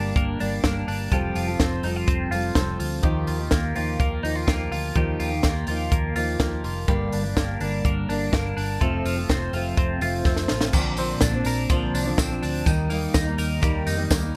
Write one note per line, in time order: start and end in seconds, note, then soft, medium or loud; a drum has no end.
0.00 0.11 G1 medium
0.00 1.12 G2 medium
0.00 0.39 G3 medium
0.00 0.15 A#3 medium
0.00 0.39 A#3 medium
0.00 0.39 D4 medium
0.00 0.40 D4 medium
0.00 0.42 G4 medium
0.00 1.12 G4 medium
0.16 0.35 G1 medium
0.16 0.63 A#3 medium
0.16 kick loud
0.16 closed hi-hat medium
0.39 0.60 G1 medium
0.39 0.62 G3 medium
0.39 0.64 A#3 medium
0.39 0.87 D4 medium
0.39 0.64 D4 medium
0.39 0.65 G4 medium
0.39 open hi-hat medium
0.63 0.83 G1 medium
0.63 1.12 G3 medium
0.63 1.16 A#3 medium
0.63 1.12 A#3 medium
0.63 1.12 D4 medium
0.63 1.14 G4 medium
0.63 kick loud
0.63 snare loud
0.63 closed hi-hat medium
0.88 1.07 G1 medium
0.88 1.16 D4 medium
0.88 open hi-hat medium
1.12 1.31 F1 medium
1.12 3.02 F3 medium
1.12 1.48 F3 medium
1.12 1.48 G3 medium
1.12 1.49 C4 medium
1.12 1.48 F4 loud
1.12 3.03 G4 medium
1.12 1.46 A4 medium
1.12 kick loud
1.12 closed hi-hat medium
1.35 1.55 F1 medium
1.35 1.83 F4 medium
1.35 open hi-hat medium
1.47 1.83 C4 soft
1.47 1.84 F4 soft
1.47 1.83 A4 medium
1.60 1.79 F1 loud
1.60 2.06 C4 medium
1.60 kick medium
1.60 snare medium
1.60 closed hi-hat medium
1.83 2.03 F1 medium
1.83 2.31 G3 medium
1.83 2.31 C4 medium
1.83 1.96 D#4 medium
1.83 2.33 F4 medium
1.83 2.33 A4 medium
1.83 open hi-hat medium
1.96 2.30 F4 soft
2.08 2.27 F1 loud
2.08 2.54 C4 medium
2.08 kick loud
2.08 closed hi-hat medium
2.30 2.50 F1 medium
2.30 2.53 G3 medium
2.30 2.55 C4 medium
2.30 2.79 F4 medium
2.30 2.56 F4 medium
2.30 open hi-hat medium
2.34 2.57 A4 medium
2.55 2.75 F1 loud
2.55 3.03 G3 medium
2.55 3.08 C4 medium
2.55 3.03 C4 medium
2.55 3.04 F4 medium
2.55 3.05 A4 medium
2.55 kick loud
2.55 snare loud
2.55 closed hi-hat medium
2.79 2.99 D2 medium
2.79 3.27 F4 medium
2.79 open hi-hat medium
3.03 3.23 D#2 medium
3.03 3.39 D#3 medium
3.03 4.94 D#3 medium
3.03 3.40 F3 medium
3.03 3.40 A#3 medium
3.03 3.39 D#4 medium
3.03 4.96 G4 medium
3.03 3.38 G4 medium
3.03 kick loud
3.03 closed hi-hat medium
3.27 3.47 D#2 medium
3.27 3.75 F4 medium
3.27 open hi-hat medium
3.39 3.74 A#3 soft
3.39 3.75 D#4 soft
3.39 3.75 G4 medium
3.51 3.72 D#2 loud
3.51 4.00 A#3 medium
3.51 kick medium
3.51 snare loud
3.51 closed hi-hat medium
3.74 3.96 D#2 medium
3.74 4.22 F3 medium
3.74 4.24 A#3 medium
3.74 4.23 D#4 medium
3.74 4.23 F4 medium
3.74 4.26 G4 medium
3.74 open hi-hat medium
3.99 4.19 D#2 medium
3.99 4.47 A#3 medium
3.99 kick loud
3.99 closed hi-hat medium
4.23 4.43 D#2 medium
4.23 4.46 F3 medium
4.23 4.47 A#3 medium
4.23 4.36 D#4 medium
4.23 4.48 D#4 medium
4.23 4.49 G4 medium
4.23 open hi-hat medium
4.36 4.70 F4 soft
4.47 4.68 D#2 medium
4.47 4.95 F3 medium
4.47 5.44 A#3 medium
4.47 4.97 A#3 medium
4.47 4.96 D#4 medium
4.47 4.97 G4 medium
4.47 kick loud
4.47 snare loud
4.47 closed hi-hat medium
4.71 4.91 D2 medium
4.71 5.18 F4 medium
4.71 open hi-hat medium
4.95 5.15 D#2 loud
4.95 6.88 D#3 medium
4.95 5.32 D#3 medium
4.95 5.32 F3 medium
4.95 5.32 A#3 medium
4.95 5.31 D#4 medium
4.95 6.88 G4 medium
4.95 5.30 G4 medium
4.95 kick loud
4.95 closed hi-hat medium
5.20 5.40 D#2 loud
5.20 5.67 F4 medium
5.20 open hi-hat medium
5.31 5.68 A#3 soft
5.31 5.68 D#4 soft
5.31 5.68 G4 medium
5.43 5.64 D#2 loud
5.43 5.91 A#3 medium
5.43 kick medium
5.43 snare medium
5.43 closed hi-hat medium
5.67 5.87 D#2 loud
5.67 6.14 F3 medium
5.67 6.16 A#3 medium
5.67 6.16 D#4 medium
5.67 6.15 F4 medium
5.67 open hi-hat medium
5.71 6.18 G4 medium
5.92 6.12 D#2 loud
5.92 6.40 A#3 medium
5.92 kick loud
5.92 closed hi-hat medium
6.15 6.35 D#2 loud
6.15 6.38 F3 medium
6.15 6.39 A#3 medium
6.15 6.40 D#4 medium
6.15 6.63 F4 medium
6.15 6.41 G4 medium
6.15 open hi-hat medium
6.39 6.59 D#2 medium
6.39 6.88 F3 medium
6.39 6.93 A#3 medium
6.39 6.87 A#3 medium
6.39 6.89 D#4 medium
6.39 6.90 G4 medium
6.39 kick loud
6.39 snare loud
6.39 closed hi-hat medium
6.64 6.84 F1 medium
6.64 6.93 F4 medium
6.64 open hi-hat medium
6.87 7.08 G1 loud
6.87 7.24 G2 medium
6.87 8.81 G2 medium
6.87 7.24 D3 medium
6.87 7.25 G3 medium
6.87 7.24 A#3 loud
6.87 7.22 D4 loud
6.87 8.81 G4 medium
6.87 kick loud
6.87 closed hi-hat medium
7.12 7.33 G1 medium
7.12 7.60 D4 medium
7.12 open hi-hat medium
7.24 7.61 G3 soft
7.24 7.61 A#3 soft
7.24 7.60 D4 medium
7.37 7.57 G1 loud
7.37 7.84 A#3 medium
7.37 kick medium
7.37 snare loud
7.37 closed hi-hat medium
7.60 7.80 G1 loud
7.60 8.07 D3 medium
7.60 8.08 G3 medium
7.60 8.09 A#3 medium
7.60 8.08 D4 medium
7.60 8.10 D4 medium
7.60 open hi-hat medium
7.85 8.05 G1 loud
7.85 8.32 A#3 medium
7.85 kick loud
7.85 closed hi-hat medium
8.09 8.29 G1 medium
8.09 8.31 D3 medium
8.09 8.32 G3 medium
8.09 8.33 A#3 medium
8.09 8.56 D4 medium
8.09 8.34 D4 medium
8.09 open hi-hat medium
8.32 8.53 G1 loud
8.32 8.80 D3 medium
8.32 8.80 G3 medium
8.32 8.86 A#3 medium
8.32 8.81 A#3 medium
8.32 kick loud
8.32 snare loud
8.32 closed hi-hat medium
8.57 8.77 G1 medium
8.57 8.86 D4 medium
8.57 open hi-hat medium
8.81 9.01 F1 loud
8.81 9.17 F2 medium
8.81 9.17 C3 medium
8.81 9.17 F3 loud
8.81 10.74 F3 medium
8.81 9.17 A3 medium
8.81 9.15 C4 loud
8.81 10.74 A4 medium
8.81 kick loud
8.81 closed hi-hat medium
9.05 9.25 F1 loud
9.05 9.53 F4 medium
9.05 open hi-hat medium
9.16 9.53 F3 soft
9.16 9.54 A3 soft
9.16 9.53 C4 medium
9.29 9.49 F1 loud
9.29 9.78 C4 medium
9.29 kick loud
9.29 snare loud
9.29 closed hi-hat medium
9.53 9.73 F1 loud
9.53 10.00 C3 medium
9.53 10.02 F3 medium
9.53 10.02 A3 medium
9.53 10.03 C4 medium
9.53 10.02 F4 medium
9.53 open hi-hat medium
9.77 9.97 F1 medium
9.77 10.26 C4 medium
9.77 kick loud
9.77 closed hi-hat medium
10.01 10.21 F1 loud
10.01 10.24 C3 medium
10.01 10.25 F3 medium
10.01 10.26 A3 medium
10.01 10.27 C4 medium
10.01 10.49 F4 medium
10.01 open hi-hat medium
10.25 10.45 F1 medium
10.25 10.74 C3 medium
10.25 10.74 F3 medium
10.25 10.74 A3 medium
10.25 10.79 C4 medium
10.25 10.75 C4 medium
10.25 kick loud
10.25 snare soft
10.36 snare medium
10.48 10.70 A1 medium
10.48 10.79 F4 medium
10.48 snare medium
10.61 snare medium
10.73 11.13 A#1 loud
10.73 12.66 A#2 medium
10.73 10.96 D3 medium
10.73 10.97 F3 medium
10.73 10.98 C4 medium
10.73 10.99 D4 medium
10.73 kick loud
10.73 crash loud
10.73 tambourine medium
10.97 11.33 D3 medium
10.97 11.34 F3 medium
10.97 12.17 C4 medium
10.97 11.34 C4 medium
10.97 11.32 D4 medium
10.97 open hi-hat medium
10.97 tambourine soft
11.21 11.42 A#1 loud
11.21 11.93 D4 medium
11.21 kick medium
11.21 snare loud
11.21 hi-hat pedal medium
11.21 ride medium
11.21 tambourine medium
11.33 11.69 F3 medium
11.33 11.70 C4 medium
11.33 11.70 D4 medium
11.45 11.66 A#1 loud
11.45 13.38 A#4 medium
11.45 open hi-hat medium
11.45 tambourine medium
11.69 11.89 A#1 loud
11.69 12.06 D3 medium
11.69 12.05 F3 medium
11.69 12.71 F3 medium
11.69 12.05 C4 medium
11.69 12.04 D4 medium
11.69 kick loud
11.69 hi-hat pedal medium
11.69 ride medium
11.69 tambourine soft
11.94 12.14 C2 medium
11.94 12.41 D4 medium
11.94 open hi-hat medium
11.94 tambourine soft
12.05 12.31 A#2 medium
12.05 12.31 D3 medium
12.05 12.30 F3 medium
12.05 12.30 C4 medium
12.05 12.28 D4 medium
12.18 12.38 A#1 loud
12.18 12.71 C4 medium
12.18 kick loud
12.18 snare loud
12.18 ride medium
12.18 tambourine medium
12.29 12.66 F3 medium
12.29 12.66 C4 medium
12.29 12.66 D4 medium
12.42 12.63 D2 medium
12.42 12.71 D4 medium
12.42 open hi-hat medium
12.42 tambourine soft
12.65 13.06 D#2 loud
12.65 12.88 D#3 medium
12.65 14.36 D#3 medium
12.65 12.90 G3 medium
12.65 12.91 A#3 medium
12.65 12.91 D#4 medium
12.65 kick loud
12.65 hi-hat pedal medium
12.65 ride medium
12.65 tambourine medium
12.90 13.26 D#3 medium
12.90 13.27 G3 medium
12.90 14.10 A#3 medium
12.90 13.26 A#3 medium
12.90 13.24 D#4 medium
12.90 open hi-hat medium
12.90 tambourine soft
13.14 13.34 D#2 loud
13.14 13.85 D#4 medium
13.14 kick loud
13.14 snare loud
13.14 hi-hat pedal medium
13.14 ride medium
13.14 tambourine medium
13.25 13.60 G3 medium
13.25 13.61 A#3 medium
13.25 13.62 D#4 medium
13.38 13.58 D#2 loud
13.38 14.36 A#4 medium
13.38 open hi-hat medium
13.38 tambourine medium
13.60 13.82 D#2 loud
13.60 13.97 D#3 medium
13.60 13.97 G3 medium
13.60 14.36 G3 medium
13.60 13.97 A#3 medium
13.60 13.96 D#4 medium
13.60 kick loud
13.60 hi-hat pedal medium
13.60 ride medium
13.60 tambourine soft
13.87 14.06 F2 medium
13.87 14.34 D#4 medium
13.87 open hi-hat medium
13.87 tambourine soft
13.97 14.23 D#3 medium
13.97 14.23 G3 medium
13.97 14.22 A#3 medium
13.97 14.21 D#4 medium
14.11 14.31 D#2 loud
14.11 14.36 A#3 medium
14.11 kick loud
14.11 snare loud
14.11 hi-hat pedal medium
14.11 ride medium
14.11 tambourine medium
14.22 14.36 G3 medium
14.22 14.36 A#3 medium
14.22 14.36 D#4 medium